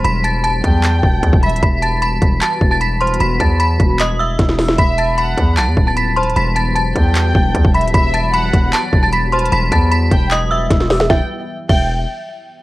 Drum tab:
CC |------------------------------------------------|------------------------------------------------|------------------------------------------------|------------------------------------------------|
HH |x-----x-----x-----x-----x-----------x-----x-x-x-|x-----x-----x-----x-----x-----------x-----x-x-x-|x-----x-----x-----x-----x-----------x-----o-----|x-----x-----x-----x-----x-----------x-----x-x-x-|
CP |------------------------x-----------------------|------------------------x-----------------------|------------------------x-----------------------|------------------------x-----------------------|
SD |------------------------------------------------|------------------------------------------------|------------------------------------o--o--o--o--|------------------------------------------------|
BD |------------------o-----------o-----o--o--------|o-----------------o-----------o-----------------|------o-----------o-----------------o-----------|o-----------------o-----------o-----------------|

CC |------------------------------------------------|------------------------------------------------|------------------------------------------------|------------------x-----------------------------|
HH |x-----x-----x-----x-----x-----------x-----x-x-x-|x-----x-----x-----x-----x-----------x-----x-x-x-|x-----x-----x-----x-----x-----------x-----o-----|------------------------------------------------|
CP |------------------------x-----------------------|------------------------x-----------------------|------------------------x-----------------------|------------------------------------------------|
SD |------------------------------------------------|------------------------------------------------|------------------------------------o--o--o--o--|o-----------------------------------------------|
BD |------------------o-----------o-----o--o--------|o-----------------o-----------o-----------------|------o-----------o-----------------o-----------|o-----------------o-----------------------------|